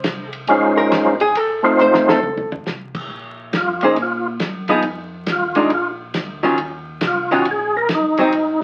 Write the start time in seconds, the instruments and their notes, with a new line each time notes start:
Already playing: hollow-body jazz guitar C5
0.04 tonewheel organ C2, kick, snare, hi-hat pedal, ride
0.33 ride
0.47 tonewheel organ A#1 G#3 C#4 D#4 F4 C5, kick, ride
0.77 hollow-body jazz guitar A#4
0.91 tonewheel organ G#1, kick, snare, hi-hat pedal, ride
1.20 hollow-body jazz guitar G#4, ride
1.35 tonewheel organ F1, hollow-body jazz guitar A4, kick, ride
1.63 tonewheel organ A3 C4 D#4 F4 C5
1.78 tonewheel organ A1, hollow-body jazz guitar C5, hi-hat pedal
1.94 snare
2.09 hollow-body jazz guitar A4, snare
2.22 tonewheel organ C#2, floor tom
2.38 floor tom
2.52 tonewheel organ C#2, floor tom
2.66 tonewheel organ C2, snare, hi-hat pedal
2.95 kick, crash
3.10 tonewheel organ A#1, kick
3.53 tonewheel organ F2, kick, snare, hi-hat pedal, ride
3.57 tonewheel organ F4
3.81 hollow-body jazz guitar A#3 C#4 G#4 C5, tonewheel organ D#4, ride
3.96 tonewheel organ A#2, kick, ride
4.02 tonewheel organ F4
4.39 tonewheel organ F#2, kick, snare, hi-hat pedal, ride
4.68 hollow-body jazz guitar F3 B3 D#4 G#4, ride
4.82 tonewheel organ F2, kick, ride
5.26 tonewheel organ D#2, kick, snare, hi-hat pedal, ride
5.32 tonewheel organ F4
5.55 hollow-body jazz guitar G#3 D4 F4, tonewheel organ D#4, ride
5.70 tonewheel organ A#1, kick, ride
5.74 tonewheel organ F4
6.14 tonewheel organ D2, kick, snare, hi-hat pedal, ride
6.43 hollow-body jazz guitar D#3 F#3 C#4 F4
6.58 tonewheel organ D#2, kick, ride
7.01 tonewheel organ C2, kick, snare, hi-hat pedal, ride
7.07 tonewheel organ F4
7.31 hollow-body jazz guitar D#3 F#3 C#4 F4, tonewheel organ F#4
7.45 tonewheel organ A#1, kick, ride
7.51 tonewheel organ G#4
7.77 tonewheel organ A#4
7.89 tonewheel organ F#1, kick, snare, hi-hat pedal, ride
7.95 tonewheel organ D#4
8.17 hollow-body jazz guitar F#3 C4 D#4, ride
8.32 tonewheel organ G#1, kick, ride